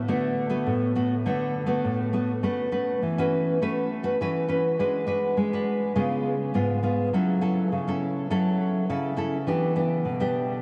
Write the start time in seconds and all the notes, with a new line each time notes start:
0.08 D3 A3 B3 F#4
0.50 A3 B3 F#4
0.66 A2
0.95 A3 B3 F#4
1.26 D3 A3 B3 F#4
1.66 A3 B3 F#4
1.84 A2
2.13 A3 B3 F#4
2.43 A3 C#4 F#4 B4
2.72 C#4 F#4 B4
3.03 E3
3.18 C#4 F#4 B4
3.62 A3 C#4 F#4 B4
4.03 C#4 F#4 B4
4.21 E3 C#4 F#4 B4
4.48 C#4 F#4 B4
4.79 G#3 D4 F#4 B4
5.07 D4 F#4 B4
5.37 G#3
5.53 D4 F#4 B4
5.96 C#3 G#3 B3 F4
6.54 G#2 G#3 B3 F4
6.83 G#3 B3 F4
7.13 F#3 C#4 E4 A4
7.41 C#4 E4 A4
7.72 C#3
7.88 C#4 E4 A4
8.30 F#3 C#4 E4 A4
8.90 C#3 C#4 E4 A4
9.17 C#4 E4 A4
9.47 E3 B3 D4 G4
9.76 B3 D4 G4
10.05 B2
10.20 B3 D4 G4